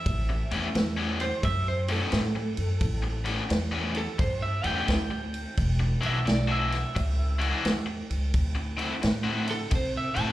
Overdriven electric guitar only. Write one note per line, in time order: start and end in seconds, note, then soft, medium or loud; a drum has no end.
0.29 muted overdriven electric guitar stroke soft
0.51 0.66 A2 medium
0.51 0.67 G3 medium
0.51 0.67 B3 loud
0.51 0.67 C#4 loud
0.75 muted overdriven electric guitar stroke soft
0.97 1.24 A2 medium
0.97 1.23 G3 medium
0.97 1.23 B3 medium
0.97 1.23 C#4 medium
1.44 muted overdriven electric guitar stroke soft
1.89 2.01 A2 medium
1.89 2.00 G3 loud
1.89 2.00 B3 medium
1.89 1.99 C#4 loud
2.00 2.20 A2 medium
2.00 2.20 G3 medium
2.00 2.20 B3 medium
2.00 2.19 C#4 medium
2.36 muted overdriven electric guitar stroke medium
3.03 muted overdriven electric guitar stroke soft
3.25 3.41 A2 medium
3.25 3.42 G3 medium
3.25 3.41 B3 medium
3.25 3.42 C#4 loud
3.49 muted overdriven electric guitar stroke soft
3.71 3.99 A2 medium
3.71 3.99 G3 medium
3.71 3.98 B3 medium
3.71 3.98 C#4 medium
4.19 muted overdriven electric guitar stroke soft
4.64 4.76 A2 medium
4.64 4.76 G3 medium
4.64 4.75 B3 loud
4.64 4.75 C#4 medium
4.76 4.96 A2 medium
4.76 4.96 G3 medium
4.76 4.95 B3 medium
4.76 4.95 C#4 medium
5.11 muted overdriven electric guitar stroke medium
5.80 muted overdriven electric guitar stroke soft
6.01 6.17 E3 medium
6.01 6.18 G#3 medium
6.01 6.18 D4 medium
6.01 6.18 F#4 medium
6.26 muted overdriven electric guitar stroke soft
6.48 6.75 E3 medium
6.48 6.75 G#3 medium
6.48 6.75 D4 medium
6.48 6.74 F#4 medium
6.95 muted overdriven electric guitar stroke soft
7.39 7.51 E3 medium
7.39 7.50 G#3 medium
7.39 7.50 D4 medium
7.39 7.49 F#4 medium
7.51 7.71 E3 medium
7.51 7.71 G#3 medium
7.51 7.71 D4 medium
7.51 7.70 F#4 medium
7.86 muted overdriven electric guitar stroke medium
8.55 muted overdriven electric guitar stroke medium
8.77 8.94 D3 medium
8.77 8.94 C4 loud
8.77 8.94 E4 loud
8.77 8.94 F#4 medium
9.02 muted overdriven electric guitar stroke soft
9.23 9.51 D3 medium
9.23 9.51 C4 medium
9.23 9.51 E4 medium
9.23 9.50 F#4 medium
9.71 muted overdriven electric guitar stroke soft
10.15 10.27 D3 medium
10.15 10.27 C4 medium
10.15 10.26 E4 medium
10.15 10.26 F#4 loud
10.27 10.32 D3 medium
10.27 10.32 C4 medium
10.27 10.32 E4 medium
10.27 10.32 F#4 medium